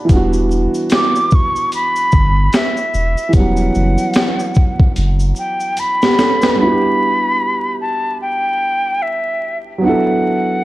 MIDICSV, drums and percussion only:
0, 0, Header, 1, 2, 480
1, 0, Start_track
1, 0, Tempo, 810811
1, 56, Time_signature, 4, 2, 24, 8
1, 6299, End_track
2, 0, Start_track
2, 0, Title_t, "Drums"
2, 55, Note_on_c, 9, 36, 114
2, 55, Note_on_c, 9, 42, 65
2, 55, Note_on_c, 9, 82, 64
2, 114, Note_off_c, 9, 36, 0
2, 114, Note_off_c, 9, 42, 0
2, 114, Note_off_c, 9, 82, 0
2, 196, Note_on_c, 9, 82, 46
2, 255, Note_off_c, 9, 82, 0
2, 303, Note_on_c, 9, 82, 43
2, 362, Note_off_c, 9, 82, 0
2, 440, Note_on_c, 9, 82, 44
2, 499, Note_off_c, 9, 82, 0
2, 531, Note_on_c, 9, 42, 71
2, 531, Note_on_c, 9, 82, 67
2, 544, Note_on_c, 9, 26, 81
2, 547, Note_on_c, 9, 38, 98
2, 591, Note_off_c, 9, 42, 0
2, 591, Note_off_c, 9, 82, 0
2, 604, Note_off_c, 9, 26, 0
2, 606, Note_off_c, 9, 38, 0
2, 684, Note_on_c, 9, 82, 47
2, 744, Note_off_c, 9, 82, 0
2, 774, Note_on_c, 9, 82, 43
2, 784, Note_on_c, 9, 36, 101
2, 833, Note_off_c, 9, 82, 0
2, 843, Note_off_c, 9, 36, 0
2, 922, Note_on_c, 9, 82, 52
2, 982, Note_off_c, 9, 82, 0
2, 1018, Note_on_c, 9, 42, 62
2, 1018, Note_on_c, 9, 82, 59
2, 1077, Note_off_c, 9, 42, 0
2, 1077, Note_off_c, 9, 82, 0
2, 1159, Note_on_c, 9, 82, 43
2, 1218, Note_off_c, 9, 82, 0
2, 1253, Note_on_c, 9, 82, 48
2, 1261, Note_on_c, 9, 36, 93
2, 1312, Note_off_c, 9, 82, 0
2, 1320, Note_off_c, 9, 36, 0
2, 1496, Note_on_c, 9, 42, 62
2, 1496, Note_on_c, 9, 82, 64
2, 1502, Note_on_c, 9, 26, 78
2, 1505, Note_on_c, 9, 38, 102
2, 1555, Note_off_c, 9, 42, 0
2, 1555, Note_off_c, 9, 82, 0
2, 1562, Note_off_c, 9, 26, 0
2, 1564, Note_off_c, 9, 38, 0
2, 1639, Note_on_c, 9, 82, 38
2, 1699, Note_off_c, 9, 82, 0
2, 1741, Note_on_c, 9, 82, 48
2, 1800, Note_off_c, 9, 82, 0
2, 1879, Note_on_c, 9, 82, 43
2, 1938, Note_off_c, 9, 82, 0
2, 1972, Note_on_c, 9, 42, 66
2, 1972, Note_on_c, 9, 82, 64
2, 1975, Note_on_c, 9, 36, 111
2, 2031, Note_off_c, 9, 42, 0
2, 2031, Note_off_c, 9, 82, 0
2, 2034, Note_off_c, 9, 36, 0
2, 2111, Note_on_c, 9, 82, 47
2, 2170, Note_off_c, 9, 82, 0
2, 2218, Note_on_c, 9, 82, 43
2, 2277, Note_off_c, 9, 82, 0
2, 2355, Note_on_c, 9, 82, 48
2, 2414, Note_off_c, 9, 82, 0
2, 2449, Note_on_c, 9, 42, 67
2, 2449, Note_on_c, 9, 82, 71
2, 2462, Note_on_c, 9, 26, 84
2, 2464, Note_on_c, 9, 38, 106
2, 2508, Note_off_c, 9, 42, 0
2, 2508, Note_off_c, 9, 82, 0
2, 2521, Note_off_c, 9, 26, 0
2, 2523, Note_off_c, 9, 38, 0
2, 2602, Note_on_c, 9, 82, 51
2, 2661, Note_off_c, 9, 82, 0
2, 2691, Note_on_c, 9, 82, 42
2, 2704, Note_on_c, 9, 36, 98
2, 2750, Note_off_c, 9, 82, 0
2, 2763, Note_off_c, 9, 36, 0
2, 2839, Note_on_c, 9, 36, 91
2, 2898, Note_off_c, 9, 36, 0
2, 2937, Note_on_c, 9, 42, 60
2, 2937, Note_on_c, 9, 82, 58
2, 2996, Note_off_c, 9, 42, 0
2, 2996, Note_off_c, 9, 82, 0
2, 3075, Note_on_c, 9, 82, 46
2, 3135, Note_off_c, 9, 82, 0
2, 3172, Note_on_c, 9, 82, 49
2, 3231, Note_off_c, 9, 82, 0
2, 3316, Note_on_c, 9, 82, 46
2, 3375, Note_off_c, 9, 82, 0
2, 3415, Note_on_c, 9, 42, 68
2, 3415, Note_on_c, 9, 82, 63
2, 3474, Note_off_c, 9, 42, 0
2, 3474, Note_off_c, 9, 82, 0
2, 3563, Note_on_c, 9, 82, 40
2, 3569, Note_on_c, 9, 38, 76
2, 3622, Note_off_c, 9, 82, 0
2, 3628, Note_off_c, 9, 38, 0
2, 3662, Note_on_c, 9, 82, 48
2, 3663, Note_on_c, 9, 38, 86
2, 3721, Note_off_c, 9, 82, 0
2, 3722, Note_off_c, 9, 38, 0
2, 3799, Note_on_c, 9, 82, 43
2, 3808, Note_on_c, 9, 38, 88
2, 3858, Note_off_c, 9, 82, 0
2, 3868, Note_off_c, 9, 38, 0
2, 6299, End_track
0, 0, End_of_file